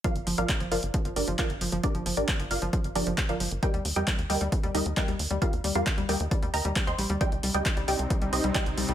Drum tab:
HH |xxoxxxoxxxoxxxox|xxoxxxoxxxoxxxox|xxoxxxoxxxoxxxox|xxoxxxoxxxoxxxox|
CP |----x-------x---|----x-------x---|----x-------x---|----x-------x---|
BD |o---o---o---o---|o---o---o---o---|o---o---o---o---|o---o---o---o---|

HH |xxoxxxoxxxoxxxox|
CP |----x-------x---|
BD |o---o---o---o---|